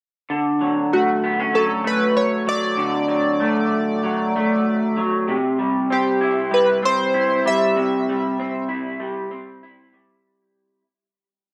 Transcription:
0, 0, Header, 1, 3, 480
1, 0, Start_track
1, 0, Tempo, 622407
1, 234, Time_signature, 4, 2, 24, 8
1, 8893, End_track
2, 0, Start_track
2, 0, Title_t, "Synth keys"
2, 0, Program_c, 0, 88
2, 720, Note_on_c, 0, 66, 80
2, 1195, Note_on_c, 0, 69, 87
2, 1212, Note_off_c, 0, 66, 0
2, 1443, Note_off_c, 0, 69, 0
2, 1444, Note_on_c, 0, 71, 83
2, 1671, Note_on_c, 0, 73, 86
2, 1687, Note_off_c, 0, 71, 0
2, 1917, Note_on_c, 0, 74, 94
2, 1921, Note_off_c, 0, 73, 0
2, 3805, Note_off_c, 0, 74, 0
2, 4568, Note_on_c, 0, 67, 76
2, 5010, Note_off_c, 0, 67, 0
2, 5042, Note_on_c, 0, 71, 82
2, 5285, Note_off_c, 0, 71, 0
2, 5285, Note_on_c, 0, 72, 90
2, 5764, Note_on_c, 0, 76, 96
2, 5773, Note_off_c, 0, 72, 0
2, 6687, Note_off_c, 0, 76, 0
2, 8893, End_track
3, 0, Start_track
3, 0, Title_t, "Clean electric guitar"
3, 0, Program_c, 1, 27
3, 231, Note_on_c, 1, 50, 79
3, 471, Note_on_c, 1, 54, 52
3, 717, Note_on_c, 1, 57, 47
3, 954, Note_on_c, 1, 59, 62
3, 1076, Note_off_c, 1, 59, 0
3, 1076, Note_on_c, 1, 61, 50
3, 1173, Note_off_c, 1, 54, 0
3, 1182, Note_on_c, 1, 54, 59
3, 1413, Note_off_c, 1, 57, 0
3, 1422, Note_on_c, 1, 57, 49
3, 1670, Note_off_c, 1, 61, 0
3, 1897, Note_off_c, 1, 54, 0
3, 1906, Note_on_c, 1, 54, 58
3, 2129, Note_off_c, 1, 50, 0
3, 2138, Note_on_c, 1, 50, 82
3, 2368, Note_off_c, 1, 54, 0
3, 2378, Note_on_c, 1, 54, 53
3, 2614, Note_off_c, 1, 57, 0
3, 2623, Note_on_c, 1, 57, 57
3, 3103, Note_off_c, 1, 54, 0
3, 3112, Note_on_c, 1, 54, 58
3, 3349, Note_off_c, 1, 57, 0
3, 3363, Note_on_c, 1, 57, 58
3, 3824, Note_off_c, 1, 54, 0
3, 3834, Note_on_c, 1, 54, 59
3, 4066, Note_off_c, 1, 50, 0
3, 4073, Note_on_c, 1, 48, 76
3, 4127, Note_off_c, 1, 54, 0
3, 4131, Note_off_c, 1, 57, 0
3, 4310, Note_on_c, 1, 55, 55
3, 4552, Note_on_c, 1, 60, 52
3, 4787, Note_on_c, 1, 64, 62
3, 5019, Note_off_c, 1, 55, 0
3, 5022, Note_on_c, 1, 55, 61
3, 5261, Note_off_c, 1, 60, 0
3, 5264, Note_on_c, 1, 60, 51
3, 5504, Note_off_c, 1, 64, 0
3, 5507, Note_on_c, 1, 64, 61
3, 5746, Note_off_c, 1, 55, 0
3, 5749, Note_on_c, 1, 55, 62
3, 5982, Note_off_c, 1, 48, 0
3, 5985, Note_on_c, 1, 48, 69
3, 6236, Note_off_c, 1, 55, 0
3, 6239, Note_on_c, 1, 55, 58
3, 6471, Note_off_c, 1, 60, 0
3, 6474, Note_on_c, 1, 60, 53
3, 6697, Note_off_c, 1, 64, 0
3, 6700, Note_on_c, 1, 64, 64
3, 6937, Note_off_c, 1, 55, 0
3, 6940, Note_on_c, 1, 55, 61
3, 7177, Note_off_c, 1, 60, 0
3, 7180, Note_on_c, 1, 60, 50
3, 7424, Note_off_c, 1, 64, 0
3, 7427, Note_on_c, 1, 64, 61
3, 7657, Note_off_c, 1, 55, 0
3, 7660, Note_on_c, 1, 55, 52
3, 8345, Note_off_c, 1, 55, 0
3, 8349, Note_off_c, 1, 48, 0
3, 8349, Note_off_c, 1, 60, 0
3, 8349, Note_off_c, 1, 64, 0
3, 8893, End_track
0, 0, End_of_file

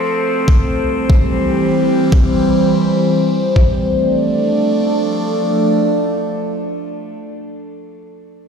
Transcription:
0, 0, Header, 1, 3, 480
1, 0, Start_track
1, 0, Key_signature, -1, "minor"
1, 0, Tempo, 410959
1, 559, Time_signature, 4, 2, 24, 8
1, 9905, End_track
2, 0, Start_track
2, 0, Title_t, "Ambient pad"
2, 0, Program_c, 0, 92
2, 0, Note_on_c, 0, 53, 76
2, 0, Note_on_c, 0, 57, 74
2, 0, Note_on_c, 0, 60, 71
2, 0, Note_on_c, 0, 69, 74
2, 0, Note_on_c, 0, 72, 88
2, 522, Note_off_c, 0, 53, 0
2, 522, Note_off_c, 0, 57, 0
2, 522, Note_off_c, 0, 69, 0
2, 561, Note_on_c, 0, 52, 81
2, 561, Note_on_c, 0, 55, 77
2, 561, Note_on_c, 0, 67, 75
2, 4354, Note_off_c, 0, 60, 0
2, 4354, Note_off_c, 0, 72, 0
2, 4362, Note_off_c, 0, 52, 0
2, 4362, Note_off_c, 0, 55, 0
2, 4362, Note_off_c, 0, 67, 0
2, 4399, Note_on_c, 0, 53, 82
2, 4399, Note_on_c, 0, 57, 74
2, 4400, Note_on_c, 0, 62, 70
2, 4400, Note_on_c, 0, 69, 69
2, 4400, Note_on_c, 0, 74, 85
2, 8376, Note_off_c, 0, 53, 0
2, 8376, Note_off_c, 0, 57, 0
2, 8376, Note_off_c, 0, 62, 0
2, 8376, Note_off_c, 0, 69, 0
2, 8376, Note_off_c, 0, 74, 0
2, 9905, End_track
3, 0, Start_track
3, 0, Title_t, "Drums"
3, 80, Note_on_c, 9, 42, 72
3, 197, Note_off_c, 9, 42, 0
3, 320, Note_on_c, 9, 42, 48
3, 437, Note_off_c, 9, 42, 0
3, 560, Note_on_c, 9, 36, 94
3, 560, Note_on_c, 9, 42, 76
3, 677, Note_off_c, 9, 36, 0
3, 677, Note_off_c, 9, 42, 0
3, 1040, Note_on_c, 9, 42, 73
3, 1157, Note_off_c, 9, 42, 0
3, 1280, Note_on_c, 9, 36, 94
3, 1397, Note_off_c, 9, 36, 0
3, 1406, Note_on_c, 9, 42, 49
3, 1520, Note_off_c, 9, 42, 0
3, 1520, Note_on_c, 9, 42, 73
3, 1637, Note_off_c, 9, 42, 0
3, 1886, Note_on_c, 9, 42, 48
3, 2000, Note_off_c, 9, 42, 0
3, 2000, Note_on_c, 9, 42, 75
3, 2117, Note_off_c, 9, 42, 0
3, 2240, Note_on_c, 9, 42, 49
3, 2357, Note_off_c, 9, 42, 0
3, 2480, Note_on_c, 9, 36, 99
3, 2480, Note_on_c, 9, 42, 74
3, 2597, Note_off_c, 9, 36, 0
3, 2597, Note_off_c, 9, 42, 0
3, 2960, Note_on_c, 9, 42, 77
3, 3077, Note_off_c, 9, 42, 0
3, 3200, Note_on_c, 9, 42, 52
3, 3317, Note_off_c, 9, 42, 0
3, 3326, Note_on_c, 9, 42, 49
3, 3440, Note_off_c, 9, 42, 0
3, 3440, Note_on_c, 9, 42, 79
3, 3557, Note_off_c, 9, 42, 0
3, 3806, Note_on_c, 9, 42, 48
3, 3920, Note_off_c, 9, 42, 0
3, 3920, Note_on_c, 9, 42, 73
3, 4036, Note_off_c, 9, 42, 0
3, 4160, Note_on_c, 9, 36, 54
3, 4277, Note_off_c, 9, 36, 0
3, 9905, End_track
0, 0, End_of_file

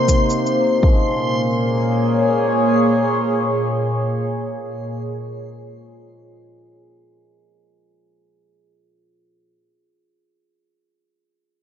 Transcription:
0, 0, Header, 1, 5, 480
1, 0, Start_track
1, 0, Key_signature, -5, "minor"
1, 0, Tempo, 750000
1, 771, Time_signature, 4, 2, 24, 8
1, 7443, End_track
2, 0, Start_track
2, 0, Title_t, "Synth texture"
2, 0, Program_c, 0, 99
2, 0, Note_on_c, 0, 84, 80
2, 783, Note_off_c, 0, 84, 0
2, 7443, End_track
3, 0, Start_track
3, 0, Title_t, "Ambient pad"
3, 0, Program_c, 1, 92
3, 0, Note_on_c, 1, 48, 65
3, 0, Note_on_c, 1, 58, 76
3, 0, Note_on_c, 1, 63, 81
3, 0, Note_on_c, 1, 72, 68
3, 533, Note_off_c, 1, 72, 0
3, 535, Note_off_c, 1, 48, 0
3, 535, Note_off_c, 1, 58, 0
3, 535, Note_off_c, 1, 63, 0
3, 538, Note_on_c, 1, 46, 64
3, 612, Note_on_c, 1, 58, 70
3, 923, Note_on_c, 1, 68, 68
3, 984, Note_on_c, 1, 73, 71
3, 3174, Note_off_c, 1, 73, 0
3, 3176, Note_off_c, 1, 68, 0
3, 3178, Note_off_c, 1, 58, 0
3, 3181, Note_off_c, 1, 46, 0
3, 7443, End_track
4, 0, Start_track
4, 0, Title_t, "Hammered dulcimer"
4, 0, Program_c, 2, 15
4, 0, Note_on_c, 2, 48, 63
4, 0, Note_on_c, 2, 58, 50
4, 0, Note_on_c, 2, 60, 55
4, 0, Note_on_c, 2, 67, 56
4, 54, Note_on_c, 2, 51, 58
4, 83, Note_off_c, 2, 48, 0
4, 183, Note_off_c, 2, 67, 0
4, 186, Note_on_c, 2, 67, 55
4, 289, Note_on_c, 2, 48, 67
4, 323, Note_off_c, 2, 51, 0
4, 420, Note_off_c, 2, 60, 0
4, 422, Note_on_c, 2, 60, 54
4, 502, Note_on_c, 2, 46, 65
4, 529, Note_on_c, 2, 53, 72
4, 551, Note_on_c, 2, 56, 75
4, 563, Note_off_c, 2, 48, 0
4, 571, Note_on_c, 2, 61, 72
4, 589, Note_off_c, 2, 67, 0
4, 589, Note_on_c, 2, 68, 77
4, 609, Note_off_c, 2, 60, 0
4, 3887, Note_off_c, 2, 68, 0
4, 4371, Note_off_c, 2, 58, 0
4, 4775, Note_off_c, 2, 61, 0
4, 5550, Note_off_c, 2, 56, 0
4, 6076, Note_off_c, 2, 53, 0
4, 6160, Note_off_c, 2, 46, 0
4, 7443, End_track
5, 0, Start_track
5, 0, Title_t, "Drums"
5, 53, Note_on_c, 9, 36, 54
5, 54, Note_on_c, 9, 69, 68
5, 117, Note_off_c, 9, 36, 0
5, 118, Note_off_c, 9, 69, 0
5, 191, Note_on_c, 9, 69, 38
5, 255, Note_off_c, 9, 69, 0
5, 297, Note_on_c, 9, 69, 29
5, 361, Note_off_c, 9, 69, 0
5, 531, Note_on_c, 9, 36, 90
5, 595, Note_off_c, 9, 36, 0
5, 7443, End_track
0, 0, End_of_file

